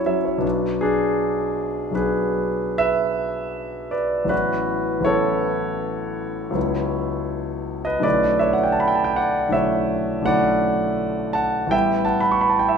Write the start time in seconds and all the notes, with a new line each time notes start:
Already playing: F#3 C#4 E4 C#5 D5 E5
0.06 F#3 C#4 E5
0.25 C#5
0.38 B1 F#3 B3 D4
0.81 D4 G#4
1.91 B1 F#3 B3
1.95 D4 G#4 B4
2.78 B4 E5
3.91 B4 D5
4.24 A1 F#3 B3 C#4
4.29 E4 F#4 B4
5.00 A1 F#3 B3
5.04 C#4 E4 A4 C#5
6.50 C#2 F#3 B3
6.55 C#4 E4
7.85 B4 D#5
7.99 B1 D3 A3 C#4 D5
8.04 E4 B4
8.39 C#5 E5
8.53 F#5
8.63 G5
8.72 A5
8.80 B5
8.88 G5
8.95 A5
9.04 G5
9.16 D5 F#5
9.48 B1 D3 A3 C#4
9.52 E4 C#5 E5
10.22 B1 D3 A3 C#4 F#5
10.26 E4 D5
11.33 F#5 A5
11.67 A1 E3 G3 B3
11.71 E4 E5 G5
12.05 F#5 A5
12.21 B5
12.32 C#6
12.41 B5
12.49 A5
12.59 G5
12.69 E5